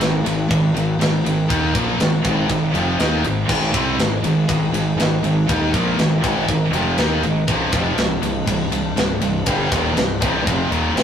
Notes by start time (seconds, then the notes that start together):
0.00 G#1 G#2 D#3, snare, ride
0.25 G#1 G#2 D#3, ride
0.48 G#1 G#2 D#3, kick, ride
0.74 G#1 G#2 D#3, ride
0.99 G#1 G#2 D#3, snare, ride
1.24 G#1 G#2 D#3, ride
1.48 D#2 D#3 A#3 D#4, kick, ride
1.74 A#1 A#2 F3 A#3, kick, ride
2.00 G#1 G#2 D#3, snare, ride
2.24 G#1 G#2 D#3 G#3, kick, ride
2.49 G#1 G#2 D#3, kick, ride
2.74 F1 F2 C3 F3, ride
2.98 D#2 D#3 A#3 D#4, snare, ride
3.23 G#1 G#2 D#3, ride
3.47 G#1 G#2 D#3 G#3 D#4 G#4, kick, crash
3.73 C2 C3 G3 C4, kick, ride
3.98 G#1 G#2 D#3, snare, ride
4.23 G#1 G#2 D#3, ride
4.48 G#1 G#2 D#3, kick, ride
4.72 G#1 G#2 D#3, ride
4.96 G#1 G#2 D#3, ride
5.00 snare
5.22 G#1 G#2 D#3, ride
5.46 D#2 D#3 A#3 D#4 A#4, kick, ride
5.73 A#1 A#2 F3 A#3, kick, ride
5.98 G#1 G#2 D#3, snare, ride
6.22 G#1 G#2 D#3 G#3, kick, ride
6.48 G#1 G#2 D#3, kick, ride
6.71 F1 F2 C3 F3, ride
6.97 D#2 D#3 A#3 D#4, snare, ride
7.23 G#1 G#2 D#3, ride
7.46 C1 C2 G2 C3 G3 D4, kick, ride
7.72 F1 F2 C3 F3, kick, ride
7.96 C1 C2 G2, snare, ride
8.20 C1 C2 G2, ride
8.46 C1 C2 G2, kick, ride
8.70 C1 C2 G2, ride
8.96 C1 C2 G2, snare, ride
9.21 C1 C2 G2, ride
9.46 G1 G2 D3 G3, kick, ride
9.70 D#1 D#2 A#2 D#3, kick, ride
9.96 C1 C2 G2, snare, ride
10.20 C1 C2 G2 C3, kick, ride
10.45 F1 F2 C3 F3, kick, ride
10.70 D#1 D#2 A#2 D#3, ride
10.95 G#1 G#2 D#3 G#3, snare, ride